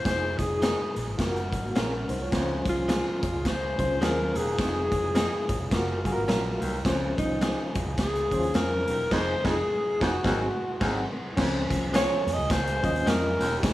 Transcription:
Already playing: F5
0.05 F1 D#4 F4 G#4 C5 D#6, kick, snare, closed hi-hat
0.38 F1 G#4, kick, closed hi-hat
0.62 G#3 C4 D#4 G#4, snare, closed hi-hat
0.96 A#1, closed hi-hat
1.08 G#1
1.18 F#1 F4 F#4 A#4 F#5 F6, kick, snare, closed hi-hat
1.36 closed hi-hat
1.52 G#1, kick, closed hi-hat
1.64 A#3 F#4
1.75 A#1 A#3 C4 C#4 F4 G#4 A#4, snare, closed hi-hat
1.92 C#4 A#4
2.09 C2 D#4 C5, closed hi-hat
2.21 F4 C#5
2.31 C#2 F2 F3 C#4 F4 G#4 C5 F5 G#5, kick, snare, closed hi-hat
2.66 C2 F4, kick, closed hi-hat, muted conga
2.88 G#3 C4 F4 G#4, snare, closed hi-hat, high conga
3.23 F2, kick, closed hi-hat
3.34 C#2
3.45 C5, kick, snare, closed hi-hat
3.78 C#2 C#4 F4 C5, kick, closed hi-hat, muted conga, low conga
4.01 D#2 G#3 C4 F4 G#4 A#4, snare, closed hi-hat, high conga
4.19 high conga
4.35 E1 D#2 G#4, closed hi-hat
4.58 F1 F2 D#4 F4 G#4 D#6, kick, snare, closed hi-hat
4.92 F1, kick, closed hi-hat, muted conga
5.15 F3 C4 D#4 G#4, snare, closed hi-hat, high conga
5.49 G#1, kick, closed hi-hat
5.60 F1
5.71 F#1 F4 F#4 A#4 F5 F6, kick, snare, closed hi-hat, low conga
6.05 F4 F#4 G#4, kick, closed hi-hat, muted conga
6.13 A#4
6.17 G#1
6.28 A#1 A#3 C#4 F4 A#4, snare, closed hi-hat, high conga
6.45 high conga
6.61 C2 D#2, closed hi-hat
6.85 C#2 F2 F3 C#4 F4 G#4 C5 F5 G#5, kick, snare, closed hi-hat
7.18 C2 D#4, kick, closed hi-hat, muted conga
7.41 G#3 C4 F4 G#4, snare, closed hi-hat, high conga
7.75 F2, kick, closed hi-hat
7.87 C#2
7.98 C#2 G#4, kick, snare, closed hi-hat
8.15 closed hi-hat
8.31 D#2 C#4 E4 C5, kick, closed hi-hat, muted conga, low conga
8.39 F4, closed hi-hat
8.54 F2 G#3 C4 F4 G#4 A#4, snare, closed hi-hat, high conga
8.72 high conga
8.88 E1 D#2, closed hi-hat
9.11 F1 F2 F3 C4 D#4 F4 G#4 C5 D#6, kick, snare, crash
9.44 F1 F2 F3 C4 D#4 F4 G#4, kick, snare
10.00 F1 F2 F3 C4 D#4 F4 F#4 G#4, kick, snare
10.24 G#1 D#2 G#2 F#3 C4 D#4 F#4 G#4 F#5 C6, kick, snare
10.81 G#1 D#2 F#3 C4 D#4 F#4 G#4, kick, snare, crash
10.87 C4
11.37 C#2 F2 F3 C#4 F4 G#4 C5 F5 G#5, kick, snare, crash
11.70 C2, kick, closed hi-hat, muted conga
11.94 G#3 C4 F4 G#4 C#5, snare, closed hi-hat, high conga
12.27 F2, closed hi-hat
12.34 D#5
12.38 C#2
12.50 C#2 C5, kick, snare, closed hi-hat, muted conga
12.67 closed hi-hat
12.83 D#2 C#4 F4 D#5, kick, closed hi-hat, muted conga, low conga
12.96 closed hi-hat
13.06 F2 G#3 C4 F4 G#4 A#4, snare, closed hi-hat, high conga
13.23 high conga
13.40 E1 D#2, snare, closed hi-hat
13.59 F2 D#4 G4
13.63 F1 F4 G#4 D#6, kick, snare, closed hi-hat

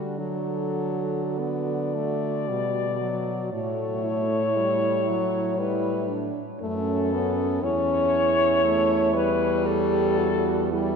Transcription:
Already playing: D3 G3 D4 F#4
0.19 F#3 F#4 A4
1.39 B3 D5
1.95 A3
2.48 B2 G3
3.00 F#3
3.52 A2 A3 F#4 C#5
4.04 E4
4.57 G3
5.08 F#3
5.59 G3 E4 B4
6.09 D4
6.61 F#2 A3 C#4 A4
7.13 B3
7.63 E2 C#4 E4 C#5
8.65 A3
9.15 G3 B4
9.66 G4 A4
10.18 F#4
10.72 G3 E4 G4

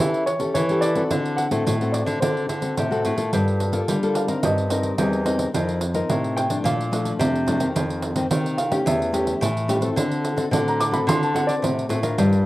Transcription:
0.00 E3 C#4 G4 A4 E5, pandeiro
0.14 pandeiro
0.26 C#5, pandeiro
0.39 C#4 G4 A4, pandeiro
0.54 E3 C#5, pandeiro
0.69 C#4 G4 A4, pandeiro
0.81 D5, pandeiro
0.95 C4 F#4 A4, pandeiro
1.11 D3, pandeiro
1.25 pandeiro
1.37 F#5, pandeiro
1.51 A2 C4 F#4 A4, pandeiro
1.66 A2, pandeiro
1.81 C4 F#4 A4, pandeiro
1.92 D5, pandeiro
2.06 D3, pandeiro
2.20 D3 C4 F#4 A4 C5, pandeiro
2.37 pandeiro
2.49 D3, pandeiro
2.61 C4 F#4 A4, pandeiro
2.76 A2 C3, pandeiro
2.91 C4 F#4 A4, pandeiro
3.05 A2, pandeiro
3.16 A#3 F4 A4, pandeiro
3.32 G2 G3, pandeiro
3.48 pandeiro
3.60 pandeiro
3.72 A#3 F4 A4, pandeiro
3.88 D3 G3, pandeiro
4.03 A#3 F4 A4, pandeiro
4.15 F5, pandeiro
4.28 C4 D#4 A#4, pandeiro
4.43 G2 G3 D#5, pandeiro
4.58 pandeiro
4.70 C4 D#4 A#4, pandeiro
4.83 pandeiro
4.98 E2 G3 C4 D#4 A#4, pandeiro
5.13 pandeiro
5.25 C4 D#4 A#4, pandeiro
5.39 pandeiro
5.54 F2 F3 C4 D#4 A#4, pandeiro
5.69 pandeiro
5.81 pandeiro
5.94 C4 D#4 A#4, pandeiro
6.09 A2 C3, pandeiro
6.24 pandeiro
6.37 G5, pandeiro
6.50 F3 A3 D4, pandeiro
6.64 A#2 F5, pandeiro
6.81 pandeiro
6.91 F3 A3 D4, pandeiro
7.05 pandeiro
7.19 F2 C3, pandeiro
7.35 pandeiro
7.47 F3 A3 D4, pandeiro
7.60 D#3 A#3 C4, pandeiro
7.75 F2, pandeiro
7.90 pandeiro
8.02 pandeiro
8.16 D#3 A#3 C4, pandeiro
8.30 C3 D#3 A#3 C4, pandeiro
8.46 pandeiro
8.58 F5, pandeiro
8.71 A3 C#4 G4, pandeiro
8.86 E2 E3 E5, pandeiro
9.02 pandeiro
9.12 A3 C#4 G4, pandeiro
9.27 pandeiro
9.41 A2 E3, pandeiro
9.57 pandeiro
9.68 A3 C#4 G4, pandeiro
9.81 C4 F#4 A4, pandeiro
9.96 D3, pandeiro
10.11 pandeiro
10.25 pandeiro
10.36 C4 F#4 A4, pandeiro
10.51 A2 D3 C4 F#4 A4 F#5, pandeiro
10.68 A#5, pandeiro
10.80 D6, pandeiro
10.91 C4 F#4 A4 B5, pandeiro
11.07 D3 C6, pandeiro
11.23 A5, pandeiro
11.34 C4 F#4 A4 F#5, pandeiro
11.47 D5, pandeiro
11.62 A2 C3 C5, pandeiro
11.79 pandeiro
11.89 A2 C4 F#4 A4, pandeiro
12.03 D4 F4 A#4, pandeiro
12.18 G2 G3, pandeiro
12.33 pandeiro

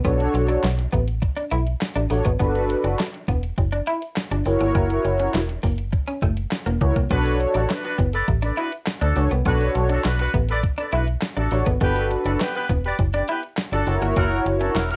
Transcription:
0.04 B1 B3 D4 F#4 A4 C#5, kick, closed hi-hat
0.20 closed hi-hat
0.34 B1, muted clean electric guitar stroke, closed hi-hat
0.48 D4, closed hi-hat
0.63 B1, snare, clap, closed hi-hat
0.79 closed hi-hat
0.92 A1 B3, kick, closed hi-hat
1.08 closed hi-hat
1.22 muted clean electric guitar stroke, kick, closed hi-hat
1.37 D4, closed hi-hat
1.52 B1 E4, closed hi-hat
1.67 closed hi-hat
1.81 snare, clap, closed hi-hat
1.96 A1 D4, closed hi-hat
2.10 A1 D4 F#4 A4 C#5, muted clean electric guitar stroke, open hi-hat
2.25 G#1 B3, kick, closed hi-hat
2.40 G1 B3 D4 F#4 A4 B4, kick, closed hi-hat
2.55 closed hi-hat
2.69 muted clean electric guitar stroke, closed hi-hat
2.84 F#1 D4, closed hi-hat
2.99 snare, clap, closed hi-hat
3.14 closed hi-hat
3.28 E1 B3, kick, closed hi-hat
3.43 closed hi-hat
3.58 F#1, muted clean electric guitar stroke, kick, closed hi-hat
3.72 D4, closed hi-hat
3.87 E4, closed hi-hat
4.02 closed hi-hat
4.16 snare, clap, closed hi-hat
4.31 G1 D4, closed hi-hat
4.45 F#1 E4 F#4 A#4 C#5, muted clean electric guitar stroke, open hi-hat
4.61 G1 A#3, closed hi-hat
4.75 F#1 A#3, kick, closed hi-hat
4.90 closed hi-hat
5.05 F#1, muted clean electric guitar stroke, closed hi-hat
5.20 C#4, closed hi-hat
5.34 E1, snare, clap, closed hi-hat
5.49 closed hi-hat
5.63 F#1 A#3, kick, open hi-hat
5.78 closed hi-hat
5.93 muted clean electric guitar stroke, kick, closed hi-hat
6.08 C#4, closed hi-hat
6.22 F#1 A3, kick, closed hi-hat
6.37 closed hi-hat
6.51 snare, clap, closed hi-hat
6.66 E1 A#3, closed hi-hat
6.80 C#2 E4 F#4 A#4 C#5, muted clean electric guitar stroke, kick, closed hi-hat
6.96 C2 A#3, kick, closed hi-hat
7.10 B1 B3 D4 F#4 A4 B4 C#5, kick, closed hi-hat
7.25 closed hi-hat
7.40 muted clean electric guitar stroke, closed hi-hat
7.54 A1 D4 F#4 A4, closed hi-hat
7.69 D4 F#4 B4, snare, clap, closed hi-hat
7.83 D4 F#4 B4, closed hi-hat
7.98 F#1 B3, kick, closed hi-hat
8.13 A4 B4 D5, closed hi-hat
8.28 A1, muted clean electric guitar stroke, kick, closed hi-hat
8.42 D4 A4 B4 D5, closed hi-hat
8.57 D4 E4 F#4 B4, closed hi-hat
8.72 closed hi-hat
8.86 snare, clap, closed hi-hat
9.01 D2 D4 F#4 A4, closed hi-hat
9.16 C#2 D4 F#4 A4 C#5, muted clean electric guitar stroke, open hi-hat
9.31 C2 B3, closed hi-hat
9.46 B1 B3 D4 F#4 A4 B4 C#5, kick, closed hi-hat
9.61 closed hi-hat
9.75 B1, muted clean electric guitar stroke, closed hi-hat
9.89 D4 F#4 A4, closed hi-hat
10.04 B1 D4 F#4 B4, snare, clap, closed hi-hat
10.19 D4 F#4 B4, closed hi-hat
10.34 A1 B3, kick, closed hi-hat
10.49 A4 B4 D5, closed hi-hat
10.63 muted clean electric guitar stroke, kick, closed hi-hat
10.78 D4 A4 B4 D5, closed hi-hat
10.92 B1 D4 E4 F#4 B4, closed hi-hat
11.07 closed hi-hat
11.21 snare, clap, closed hi-hat
11.37 A1 D4 F#4 A4, closed hi-hat
11.51 A1 D4 F#4 A4 C#5, muted clean electric guitar stroke, open hi-hat
11.66 G#1 B3, kick, closed hi-hat
11.81 G1 B3 D4 F#4 G4 A4 B4, kick, closed hi-hat
11.96 closed hi-hat
12.11 muted clean electric guitar stroke, closed hi-hat
12.25 F#1 D4 F#4 A4, closed hi-hat
12.40 B3 G4 B4, snare, clap, closed hi-hat
12.55 B3 G4 B4, closed hi-hat
12.69 E1 B3, kick, closed hi-hat
12.84 G4 B4 D5, closed hi-hat
12.99 F#1, muted clean electric guitar stroke, kick, closed hi-hat
13.13 D4 G4 B4 D5, closed hi-hat
13.28 B3 E4 G4 B4, closed hi-hat
13.43 closed hi-hat
13.57 snare, clap, closed hi-hat
13.72 G1 D4 F#4 A4, closed hi-hat
13.87 F#1 E4 F#4 A#4 C#5, muted clean electric guitar stroke, open hi-hat
14.02 G1 A#3, closed hi-hat
14.16 F#1 A#3 E4 F#4 A#4, kick, closed hi-hat
14.31 closed hi-hat
14.46 F#1, muted clean electric guitar stroke, closed hi-hat
14.60 C#4 D4 F#4 A4, closed hi-hat
14.75 E1 E4 F#4 A#4, snare, clap, closed hi-hat
14.90 E4 F#4 A#4, closed hi-hat

